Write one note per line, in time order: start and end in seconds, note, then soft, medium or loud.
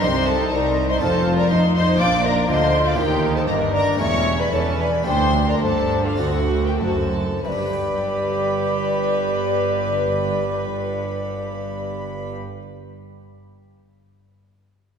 0.00 0.52 C2 medium
0.00 0.52 C3 loud
0.00 0.96 C4 medium
0.00 0.97 D#4 medium
0.00 0.98 G4 medium
0.00 0.28 C5 loud
0.00 0.08 D#5 loud
0.00 0.27 C6 loud
0.04 0.48 C3 medium
0.04 1.02 D#4 medium
0.27 0.52 A4 loud
0.27 0.54 C5 medium
0.27 0.52 A5 loud
0.52 1.00 C2 medium
0.52 1.00 C2 loud
0.52 0.98 C2 medium
0.52 0.88 A#4 medium
0.52 0.88 D5 loud
0.52 0.89 A#5 loud
0.89 1.01 C5 loud
0.89 1.01 D#5 medium
0.89 1.01 C6 loud
0.98 1.50 F1 loud
0.98 1.50 F2 medium
0.98 1.95 C4 medium
0.98 1.96 D#4 medium
0.98 1.96 F4 medium
0.98 1.51 F4 medium
0.98 1.37 A4 medium
0.98 1.37 C5 loud
0.98 1.37 A5 loud
1.02 1.47 F2 medium
1.38 1.50 A#4 medium
1.38 1.50 D5 medium
1.38 1.50 A#5 loud
1.50 2.00 F2 medium
1.50 1.99 F3 medium
1.50 1.96 F3 medium
1.50 2.00 D#4 medium
1.50 1.59 C5 loud
1.50 1.74 D#5 loud
1.50 1.74 C6 loud
1.75 1.99 C5 loud
1.75 1.99 D#5 loud
1.75 1.99 C6 loud
1.96 2.49 A#2 loud
1.96 2.93 A#3 medium
1.96 2.94 D4 medium
1.96 2.48 D4 medium
1.96 2.95 F4 medium
1.96 2.24 F5 loud
2.00 2.49 A#1 loud
2.00 2.45 A#2 medium
2.00 2.24 D5 loud
2.00 2.24 D6 loud
2.24 2.49 A#4 loud
2.24 2.30 E5 medium
2.24 2.49 A#5 loud
2.29 2.49 D5 medium
2.48 2.97 D2 medium
2.48 2.94 D3 medium
2.48 2.97 D3 medium
2.48 2.98 F4 medium
2.48 2.85 C5 loud
2.48 2.85 D#5 loud
2.48 2.86 C6 loud
2.86 2.98 D5 medium
2.86 3.00 F5 medium
2.86 2.99 D6 medium
2.94 3.94 A#3 medium
2.94 3.95 D#4 medium
2.94 3.96 G4 medium
2.98 3.44 D#2 medium
2.98 3.48 D#2 loud
2.98 3.49 D#2 loud
2.98 3.48 D#4 medium
2.98 3.35 G4 medium
2.98 3.38 A#4 loud
2.98 3.35 G5 loud
3.36 3.49 A4 medium
3.36 3.48 C5 medium
3.36 3.41 A5 loud
3.48 3.99 G1 medium
3.48 3.96 G2 medium
3.48 3.99 G2 loud
3.48 3.99 D4 medium
3.48 3.73 A#4 medium
3.48 3.75 D#5 loud
3.48 3.56 A#5 loud
3.73 3.99 A#4 loud
3.73 3.99 D5 medium
3.73 3.99 A#5 loud
3.95 5.00 A3 medium
3.95 5.01 G4 medium
3.95 5.02 A4 medium
3.99 4.51 E1 medium
3.99 4.51 E2 medium
3.99 4.48 E2 medium
3.99 4.51 C#4 medium
3.99 4.39 C#5 loud
3.99 4.38 E5 loud
3.99 4.38 C#6 loud
4.39 4.53 B4 medium
4.39 4.52 D5 medium
4.39 4.52 B5 loud
4.51 5.04 E2 medium
4.51 5.05 E3 medium
4.51 5.02 E3 medium
4.51 5.05 C#4 medium
4.51 4.79 A4 medium
4.51 4.59 C#5 loud
4.51 4.78 A5 loud
4.79 4.87 B4 loud
4.79 5.06 D5 medium
4.79 5.06 B5 loud
5.02 5.61 D2 medium
5.02 6.14 A3 medium
5.02 6.15 G4 medium
5.02 6.16 A4 medium
5.02 5.47 C5 medium
5.06 5.58 D2 medium
5.06 5.62 D2 medium
5.06 5.60 D4 medium
5.06 5.47 G5 loud
5.06 5.47 C6 loud
5.47 5.61 A#4 medium
5.47 5.55 D5 medium
5.47 5.62 A#5 loud
5.61 6.18 G1 medium
5.61 6.18 G2 medium
5.61 6.16 G2 medium
5.61 6.18 D4 medium
5.61 6.04 A4 medium
5.61 6.06 C5 medium
5.61 6.04 A5 loud
6.05 6.20 F4 medium
6.05 6.19 A4 medium
6.05 6.20 F5 medium
6.15 6.79 D2 medium
6.15 7.38 C4 medium
6.15 7.39 F#4 medium
6.15 6.80 F#4 medium
6.15 7.39 A4 medium
6.15 6.65 F#5 medium
6.20 6.79 D2 medium
6.20 6.77 D2 medium
6.20 6.64 F#4 medium
6.20 6.66 A4 medium
6.65 6.80 G4 medium
6.65 6.80 A#4 medium
6.65 6.71 G5 medium
6.79 7.44 F#1 medium
6.79 7.44 F#2 medium
6.79 7.40 F#2 medium
6.79 7.17 F#4 medium
6.79 7.44 A4 medium
6.79 7.43 C5 medium
6.79 7.42 A5 medium
7.43 12.33 G1 loud
7.43 12.32 G2 medium
7.43 12.34 G3 medium
7.43 12.33 G4 medium
7.43 12.32 B4 medium
7.43 7.49 E5 medium
7.43 12.33 B5 medium
7.48 12.41 D4 medium
7.48 12.33 D5 medium
7.59 12.48 G4 medium
7.66 12.55 B4 medium
7.73 12.62 G5 medium